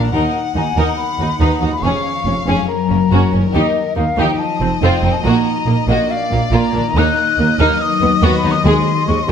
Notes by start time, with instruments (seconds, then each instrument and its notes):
Already playing: harp D#3, viola section D4, violin section A#4 F5
0.00 harp A#3 D#4
0.08 double bass section D#2, harp F#4, violin section A#4 F#5, flute F#5
0.13 cello section D#2, viola section D#4
0.55 cello section D#2, double bass section D#2, violin section D#4, viola section D#4, flute G#5
0.76 double bass section D#2, cello section D#2, viola section D#4, violin section A#4
0.80 harp D#3
0.84 harp B3, flute A#5
0.89 harp D#4
0.93 harp F#4, flute B5
1.19 double bass section D#2, cello section D#2, viola section D#4, violin section D#4
1.40 cello section D#2, double bass section D#2, viola section D#4, violin section B4, flute A#5
1.61 cello section D#2, double bass section D#2, viola section D#4, violin section F#4
1.65 harp F2
1.70 harp G#3, flute B5
1.74 harp C#4
1.79 harp G#4, flute C#6
1.83 double bass section F1, cello section F2, viola section C#4, violin section G#4 F5
2.26 double bass section F1, cello section F2, viola section C#4, violin section C#4
2.47 double bass section F1, cello section F2, viola section C#4, violin section G#4, flute G#5
2.52 harp F#2
2.56 harp F#3
2.61 harp C#4
2.65 harp A#4, violin section A#4, flute A#5
2.89 double bass section F#1, cello section F#2, violin section A#3, viola section C#4
3.12 double bass section F#1, cello section F#2, viola section C#4, violin section F#4
3.32 double bass section F#1, cello section F#2, viola section C#4, violin section C#4
3.36 harp D#3
3.41 harp G3
3.46 harp D#4 A#4
3.53 cello section D#2, double bass section D#2, viola section D#4, violin section G4, flute D#5
3.96 cello section D#2, double bass section D#2, violin section A#3, viola section D#4, flute F5
4.17 cello section D#2, double bass section D#2, viola section D#4, violin section G4
4.22 harp F3
4.26 harp C4, flute G5
4.31 harp D#4
4.35 harp F4, flute A5
4.40 violin section D#5
4.61 double bass section F1, cello section F2, viola section C4, violin section C4
4.82 double bass section F1, cello section F2, viola section C4, violin section F4, flute G5
5.02 double bass section F1, cello section F2, viola section C4, violin section D#4
5.06 harp A#2
5.10 harp A#3, flute A5
5.15 harp D#4
5.19 harp F#4, flute A#5
5.24 double bass section A#1, cello section A#2, viola section A#3, violin section F#4
5.66 double bass section A#1, cello section A#2, viola section A#3, violin section A#3
5.88 double bass section A#1, cello section A#2, viola section A#3, violin section F#4, flute D#5
5.92 harp A#2
5.97 harp A#3
6.02 harp D4 A#4
6.10 violin section D5, flute F5
6.31 double bass section A#1, cello section A#2, violin section A#3, viola section A#3
6.52 double bass section A#1, cello section A#2, viola section A#3, violin section F4, flute A#5
6.74 double bass section A#1, cello section A#2, viola section A#3, violin section D4
6.78 harp D#3
6.83 harp A#3
6.87 harp D#4
6.92 double bass section D#2, harp A#4, violin section D#5
6.96 cello section D#2, viola section A#3, violin section D#4, flute F#6
7.38 double bass section D#2, cello section D#2, viola section A#3, violin section A#3
7.59 cello section D#2, double bass section D#2, harp D#3, viola section A#3, violin section D#4, flute F6
7.68 harp F#3
7.72 harp D#4
7.76 harp B4
7.81 flute D#6
8.01 double bass section D#2, cello section D#2, violin section B3, viola section B3
8.22 double bass section D#2, cello section D#2, viola section B3, violin section F#4, flute C#6
8.37 flute B5
8.44 cello section D#2, double bass section D#2, harp D#3, viola section B3, violin section D#4
8.51 harp G#3, flute D#6
8.56 harp D#4
8.61 cello section D#2, viola section G#3, harp C5
8.65 double bass section D#2, timpani D#3, violin section G#4, flute C6
9.07 double bass section D#2, cello section D#2, viola section G#3, violin section C4, flute C#6
9.23 flute C6
9.28 viola section G#3